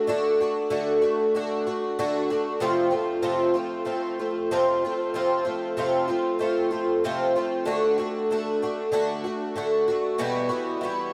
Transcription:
0.07 0.39 D3 medium
0.07 0.40 A3 medium
0.07 0.40 D4 medium
0.07 0.39 F#4 medium
0.40 0.69 A3 soft
0.40 0.70 D4 medium
0.40 0.70 F#4 medium
0.70 1.02 D3 medium
0.70 1.02 A3 medium
0.70 1.01 D4 medium
0.70 1.00 F#4 medium
1.02 1.34 A3 medium
1.02 1.34 D4 medium
1.02 1.34 F#4 medium
1.35 1.66 D3 medium
1.35 1.67 A3 medium
1.35 1.66 D4 medium
1.35 1.65 F#4 medium
1.67 1.98 A3 soft
1.67 1.98 D4 soft
1.67 1.98 F#4 medium
1.99 2.30 D3 medium
1.99 2.30 A3 medium
1.99 2.29 D4 medium
1.99 2.29 F#4 medium
2.30 2.61 A3 soft
2.30 2.62 D4 medium
2.30 2.61 F#4 medium
2.60 2.92 F2 medium
2.60 2.93 C3 medium
2.60 2.92 F3 medium
2.60 2.91 A3 medium
2.60 2.90 C4 medium
2.60 2.89 F4 medium
2.91 3.22 F3 soft
2.91 3.22 A3 medium
2.91 3.22 C4 soft
2.91 3.23 F4 medium
3.22 3.55 F2 medium
3.22 3.55 C3 medium
3.22 3.55 F3 medium
3.22 3.54 A3 medium
3.22 3.54 C4 medium
3.22 3.53 F4 medium
3.54 3.84 F3 soft
3.54 3.84 A3 soft
3.54 3.85 C4 medium
3.54 3.86 F4 medium
3.85 4.18 F3 medium
3.85 4.18 A3 medium
3.85 4.18 C4 medium
3.85 4.18 F4 medium
4.19 4.51 F3 soft
4.19 4.51 A3 soft
4.19 4.51 C4 soft
4.19 4.51 F4 soft
4.51 4.83 F2 medium
4.51 4.83 C3 medium
4.51 4.83 F3 medium
4.51 4.83 A3 medium
4.51 4.83 C4 medium
4.51 4.83 F4 medium
4.85 5.14 F3 medium
4.85 5.14 A3 medium
4.85 5.15 C4 medium
4.85 5.15 F4 medium
5.14 5.46 F2 medium
5.14 5.46 C3 medium
5.14 5.45 F3 medium
5.14 5.45 A3 medium
5.14 5.44 C4 medium
5.14 5.44 F4 medium
5.45 5.77 F3 soft
5.45 5.77 A3 soft
5.45 5.77 C4 medium
5.45 5.77 F4 medium
5.77 6.09 F2 medium
5.77 6.09 C3 medium
5.77 6.09 F3 medium
5.77 6.08 A3 medium
5.77 6.08 C4 medium
5.77 6.06 F4 medium
6.08 6.38 F3 soft
6.08 6.39 A3 soft
6.08 6.39 C4 medium
6.08 6.40 F4 medium
6.39 6.71 F3 medium
6.39 6.71 A3 medium
6.39 6.71 C4 medium
6.39 6.69 F4 medium
6.71 7.04 F3 soft
6.71 7.04 A3 soft
6.71 7.04 C4 soft
6.71 7.03 F4 soft
7.04 7.36 F2 medium
7.04 7.36 C3 medium
7.04 7.36 F3 medium
7.04 7.36 A3 medium
7.04 7.35 C4 medium
7.04 7.35 F4 medium
7.36 7.65 F3 soft
7.36 7.65 A3 medium
7.36 7.67 C4 medium
7.36 7.67 F4 medium
7.65 7.98 D3 medium
7.65 7.98 A3 medium
7.65 7.98 D4 medium
7.65 7.96 F#4 medium
7.98 8.31 A3 soft
7.98 8.31 D4 medium
7.98 8.30 F#4 medium
8.31 8.62 D3 medium
8.31 8.63 A3 medium
8.31 8.62 D4 medium
8.31 8.61 F#4 medium
8.62 8.91 A3 soft
8.62 8.92 D4 medium
8.62 8.93 F#4 medium
8.92 9.24 D3 medium
8.92 9.25 A3 medium
8.92 9.24 D4 medium
8.92 9.23 F#4 medium
9.24 9.55 A3 soft
9.24 9.57 D4 soft
9.24 9.56 F#4 soft
9.56 9.88 D3 medium
9.56 9.89 A3 medium
9.56 9.88 D4 medium
9.56 9.87 F#4 medium
9.88 10.19 A3 soft
9.88 10.19 D4 medium
9.88 10.20 F#4 medium
10.18 10.51 E2 medium
10.18 10.51 B2 medium
10.18 10.51 E3 medium
10.18 10.50 G3 medium
10.18 10.48 B3 medium
10.18 10.48 F#4 loud
10.49 10.80 E3 medium
10.49 10.82 G3 soft
10.49 10.82 B3 medium
10.49 10.82 F#4 medium
10.81 11.13 E3 medium
10.81 11.13 G3 medium
10.81 11.13 B3 medium
10.81 11.12 F#4 medium

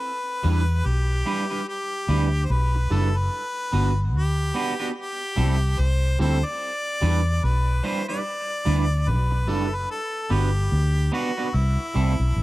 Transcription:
0.00 0.88 B4 loud
0.43 0.81 E2 medium
0.43 0.61 G3 medium
0.43 0.61 D4 medium
0.43 0.62 E4 medium
0.43 0.62 B4 medium
0.86 1.22 B1 medium
0.86 1.68 G4 loud
1.26 1.43 G3 medium
1.26 1.44 D4 medium
1.26 1.44 E4 medium
1.26 1.44 B4 medium
1.50 1.61 G3 medium
1.50 1.60 D4 medium
1.50 1.60 E4 medium
1.50 1.60 B4 medium
1.69 2.47 G4 loud
2.08 2.45 D2 medium
2.08 2.26 G3 medium
2.08 2.26 D4 medium
2.08 2.27 E4 medium
2.08 2.27 B4 medium
2.45 2.53 C5 medium
2.50 2.87 B1 medium
2.50 2.94 B4 loud
2.75 muted clean electric guitar stroke soft
2.90 3.28 F#1 medium
2.90 3.08 G3 medium
2.90 3.08 D4 medium
2.90 3.09 E4 medium
2.90 3.19 A4 medium
2.90 3.09 B4 loud
3.17 3.99 B4 medium
3.72 4.14 G1 medium
3.72 3.90 B3 medium
3.72 3.91 D4 medium
3.72 3.91 F#4 medium
3.72 3.91 B4 medium
4.14 4.51 D2 medium
4.14 4.93 G4 medium
4.54 4.72 B3 medium
4.54 4.73 D4 medium
4.54 4.73 F#4 medium
4.54 4.73 B4 medium
4.79 4.90 B3 medium
4.79 4.89 D4 medium
4.79 4.89 F#4 medium
4.79 4.89 B4 medium
4.98 5.82 G4 medium
5.36 5.74 C2 medium
5.36 5.54 G3 medium
5.36 5.55 C4 medium
5.36 5.55 E4 loud
5.36 5.55 A4 medium
5.79 6.16 C2 medium
5.79 6.20 C5 medium
6.19 6.42 D2 medium
6.19 6.37 G3 medium
6.19 6.37 C4 medium
6.19 6.38 E4 medium
6.19 6.38 A4 loud
6.19 6.47 C5 loud
6.45 7.46 D5 loud
7.01 7.39 E2 medium
7.01 7.19 G3 medium
7.01 7.20 D4 loud
7.01 7.20 E4 medium
7.01 7.20 B4 medium
7.44 7.80 B1 medium
7.44 7.87 B4 medium
7.83 8.01 G3 medium
7.83 8.02 D4 medium
7.83 8.02 E4 medium
7.83 8.02 B4 loud
7.83 8.09 C5 medium
8.08 8.19 G3 medium
8.08 8.18 D4 medium
8.08 8.18 E4 medium
8.08 8.18 B4 medium
8.08 9.10 D5 loud
8.65 9.09 D2 medium
8.65 8.83 G3 medium
8.65 8.84 D4 medium
8.65 8.84 E4 medium
8.65 8.84 B4 loud
9.08 9.49 B1 medium
9.08 9.51 B4 medium
9.31 muted clean electric guitar stroke soft
9.48 9.86 F#1 medium
9.48 9.66 G3 medium
9.48 9.66 D4 medium
9.48 9.66 E4 medium
9.48 9.76 A4 medium
9.48 9.66 B4 medium
9.75 9.90 B4 medium
9.91 10.34 A4 medium
10.30 10.68 G1 medium
10.30 10.48 B3 medium
10.30 10.48 D4 medium
10.30 10.48 F#4 medium
10.30 11.13 G4 medium
10.30 10.49 B4 medium
10.72 11.09 D2 medium
11.12 11.30 B3 medium
11.12 11.30 D4 medium
11.12 11.30 F#4 medium
11.12 11.57 F#4 medium
11.12 11.31 B4 medium
11.37 11.47 B3 medium
11.37 11.47 D4 medium
11.37 11.47 F#4 medium
11.37 11.47 B4 medium
11.54 11.76 C2 medium
11.54 12.43 E4 medium
11.94 12.17 C2 medium
11.94 12.12 G3 medium
11.94 12.13 C4 medium
11.94 12.13 E4 medium
11.94 12.13 A4 medium
12.20 12.34 B1 medium
12.36 12.43 A1 medium

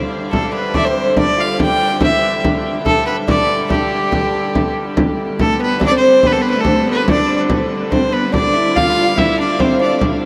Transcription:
0.00 4.97 G2 medium
0.00 4.98 D3 medium
0.30 0.53 A3 medium
0.30 0.51 A4 medium
0.30 frame drum medium
0.53 0.75 B3 medium
0.53 0.76 B4 medium
0.74 0.79 D4 medium
0.74 0.78 D5 medium
0.74 0.81 E5 medium
0.74 frame drum medium
0.80 0.85 D4 medium
0.80 0.86 D5 medium
0.84 1.18 C4 medium
0.84 1.16 C5 medium
1.17 1.37 D4 medium
1.17 1.42 D5 medium
1.17 frame drum medium
1.38 1.59 F4 medium
1.38 1.60 F5 medium
1.59 2.02 G4 medium
1.59 1.99 G5 loud
1.59 frame drum medium
2.01 2.23 E4 medium
2.01 2.41 E5 medium
2.01 frame drum medium
2.22 2.42 B3 medium
2.44 frame drum medium
2.85 3.06 A3 medium
2.85 3.05 A4 medium
2.85 frame drum medium
3.06 3.28 B3 medium
3.06 3.16 B4 medium
3.27 3.71 D4 medium
3.27 3.67 D5 loud
3.27 frame drum medium
3.69 4.71 G3 medium
3.69 4.72 G4 medium
3.69 frame drum medium
4.12 frame drum medium
4.34 frame drum soft
4.55 frame drum medium
4.97 10.01 G2 medium
4.97 10.01 D3 medium
4.97 frame drum medium
5.39 5.58 A3 medium
5.39 5.59 A3 medium
5.39 5.59 A4 medium
5.39 frame drum medium
5.59 5.79 B3 medium
5.59 5.81 B3 medium
5.59 5.80 B4 medium
5.80 5.91 D4 medium
5.80 5.93 D4 medium
5.80 frame drum medium
5.85 5.93 D5 loud
5.91 6.25 C4 medium
5.91 6.24 C4 medium
5.97 6.28 C5 medium
6.23 6.37 B3 medium
6.23 6.35 B3 medium
6.23 6.34 B4 loud
6.23 frame drum medium
6.33 6.55 B3 medium
6.33 6.43 A4 medium
6.37 6.56 B3 medium
6.37 6.49 B4 medium
6.50 6.62 B4 medium
6.55 6.87 A3 medium
6.55 6.86 A3 medium
6.60 6.89 A4 medium
6.65 frame drum medium
6.86 7.06 B3 medium
6.86 7.08 B3 medium
6.91 7.08 B4 medium
7.07 7.36 D4 medium
7.07 7.37 D4 medium
7.07 frame drum medium
7.11 7.39 D5 medium
7.50 frame drum loud
7.91 8.11 C4 medium
7.91 8.12 C4 medium
7.91 8.14 C5 medium
7.91 frame drum medium
8.12 8.34 B3 medium
8.12 8.32 B3 medium
8.12 8.33 B4 medium
8.32 8.52 D4 medium
8.32 8.56 D4 medium
8.32 8.77 D5 medium
8.32 frame drum medium
8.53 8.76 E4 medium
8.75 9.16 F4 medium
8.75 8.88 F4 medium
8.75 9.20 F5 loud
8.75 frame drum medium
8.89 9.02 F4 medium
9.03 9.15 F4 medium
9.16 9.36 E4 medium
9.16 9.41 E4 medium
9.16 9.39 E5 medium
9.16 frame drum medium
9.38 9.60 D4 medium
9.38 9.62 D5 medium
9.38 frame drum soft
9.59 9.79 C4 medium
9.59 9.82 C4 medium
9.59 9.80 C5 medium
9.59 frame drum medium
9.79 10.00 D4 medium
9.79 10.02 D4 medium
9.79 10.00 D5 medium
10.01 10.25 G2 medium
10.01 10.25 D3 medium
10.01 frame drum medium

